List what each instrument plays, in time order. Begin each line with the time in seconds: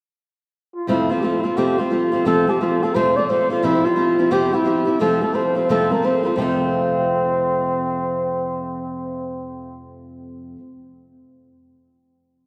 0.75 muted trumpet F4
0.87 steel-string acoustic guitar F2 C3 F3 A3 C4 F4, muted trumpet E4
1.09 steel-string acoustic guitar F3 A3 C4 F4, muted trumpet F4
1.20 steel-string acoustic guitar F3 A3 C4, muted trumpet F4 G4
1.24 steel-string acoustic guitar F4
1.39 muted trumpet E4, steel-string acoustic guitar F4
1.44 steel-string acoustic guitar F3 A3 C4, muted trumpet F4
1.57 steel-string acoustic guitar F2 C3 F3 A3 C4 F4, muted trumpet G4
1.78 steel-string acoustic guitar F3 A3 C4 F4, muted trumpet F4
1.90 steel-string acoustic guitar F3 A3 C4 F4
2.12 steel-string acoustic guitar F3 A3 C4 F4
2.25 steel-string acoustic guitar F2 C3 F3 A3 C4 F4, muted trumpet A4
2.47 steel-string acoustic guitar F3 A3 C4 F4, muted trumpet G4
2.61 steel-string acoustic guitar F3 A3 C4 F4, muted trumpet F4
2.83 steel-string acoustic guitar F3 A3 C4 F4, muted trumpet A4
2.94 steel-string acoustic guitar F2 C3 F3 A3 C4 F4, muted trumpet C5
3.16 steel-string acoustic guitar F3 A3 C4 F4, muted trumpet D5
3.26 steel-string acoustic guitar F3 A3, muted trumpet C5 D5
3.31 steel-string acoustic guitar C4 F4
3.50 steel-string acoustic guitar F3 A3 C4 F4, muted trumpet F4
3.62 steel-string acoustic guitar F2 C3 F3 C4 E4 G4, muted trumpet E4
3.84 steel-string acoustic guitar F3 C4 E4 G4, muted trumpet F4
3.96 steel-string acoustic guitar F3 C4 E4 G4
4.18 steel-string acoustic guitar F3 C4 E4 G4
4.31 steel-string acoustic guitar F2 C3 F3 C4 E4 G4, muted trumpet G4
4.51 steel-string acoustic guitar F3 C4 E4 G4, muted trumpet E4
4.64 steel-string acoustic guitar F3 C4 E4 G4
4.85 steel-string acoustic guitar F3 C4 E4 G4
4.99 steel-string acoustic guitar F2 C3 F3 A3 C4 F4, muted trumpet A4
5.21 steel-string acoustic guitar F3 A3 C4 F4, muted trumpet A4
5.33 steel-string acoustic guitar F3 A3 C4 F4, muted trumpet C5
5.55 steel-string acoustic guitar F3 A3 C4 F4, muted trumpet C5
5.69 steel-string acoustic guitar F2 C3 F3 A3 C4 F4, muted trumpet A4
5.90 steel-string acoustic guitar F3 A3 C4 F4, muted trumpet A#4
6.02 steel-string acoustic guitar F3 A3 C4 F4, muted trumpet C5
6.23 steel-string acoustic guitar F3 A3 C4 F4, muted trumpet F4
6.36 steel-string acoustic guitar F2 C3 F3 A3, muted trumpet C4
6.41 steel-string acoustic guitar C4 F4